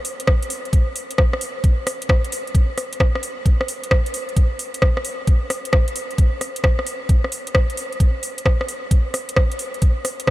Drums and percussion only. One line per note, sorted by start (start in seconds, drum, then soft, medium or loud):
0.05 open hi-hat loud
0.20 closed hi-hat medium
0.27 kick loud
0.27 cross-stick loud
0.42 closed hi-hat medium
0.50 open hi-hat loud
0.65 closed hi-hat soft
0.73 kick loud
0.73 closed hi-hat medium
0.96 open hi-hat loud
1.11 closed hi-hat medium
1.18 kick loud
1.18 cross-stick loud
1.33 cross-stick medium
1.41 open hi-hat loud
1.64 kick loud
1.64 closed hi-hat medium
1.87 cross-stick medium
1.87 open hi-hat loud
2.02 closed hi-hat medium
2.09 kick loud
2.09 cross-stick loud
2.25 closed hi-hat soft
2.32 open hi-hat loud
2.47 closed hi-hat soft
2.55 kick loud
2.55 closed hi-hat medium
2.78 cross-stick medium
2.78 open hi-hat loud
2.93 closed hi-hat medium
3.00 kick loud
3.00 cross-stick loud
3.15 cross-stick medium
3.23 open hi-hat loud
3.46 kick loud
3.46 closed hi-hat medium
3.61 cross-stick medium
3.68 open hi-hat loud
3.84 closed hi-hat medium
3.91 kick loud
3.91 cross-stick loud
4.06 closed hi-hat soft
4.14 open hi-hat loud
4.29 closed hi-hat soft
4.37 kick loud
4.37 closed hi-hat medium
4.59 open hi-hat loud
4.74 closed hi-hat medium
4.82 kick loud
4.82 cross-stick loud
4.97 cross-stick medium
5.05 open hi-hat loud
5.27 kick loud
5.27 closed hi-hat medium
5.50 cross-stick medium
5.50 open hi-hat loud
5.65 closed hi-hat medium
5.73 kick loud
5.73 cross-stick loud
5.88 closed hi-hat soft
5.96 open hi-hat loud
6.11 closed hi-hat soft
6.18 kick loud
6.18 closed hi-hat medium
6.41 cross-stick soft
6.41 open hi-hat loud
6.56 closed hi-hat medium
6.64 kick loud
6.64 cross-stick loud
6.79 cross-stick medium
6.87 open hi-hat loud
7.09 kick loud
7.09 closed hi-hat medium
7.24 cross-stick medium
7.32 open hi-hat loud
7.47 closed hi-hat medium
7.55 kick loud
7.55 cross-stick loud
7.70 closed hi-hat soft
7.77 open hi-hat loud
7.93 closed hi-hat soft
8.00 kick loud
8.00 closed hi-hat medium
8.23 open hi-hat loud
8.38 closed hi-hat medium
8.46 kick loud
8.46 cross-stick loud
8.61 cross-stick medium
8.69 open hi-hat loud
8.91 kick loud
8.91 closed hi-hat medium
9.14 cross-stick medium
9.14 open hi-hat loud
9.29 closed hi-hat medium
9.36 kick loud
9.36 cross-stick loud
9.52 closed hi-hat medium
9.59 open hi-hat loud
9.74 closed hi-hat soft
9.82 kick loud
9.82 closed hi-hat medium
10.05 cross-stick soft
10.05 open hi-hat loud
10.20 closed hi-hat medium
10.27 kick loud
10.27 cross-stick loud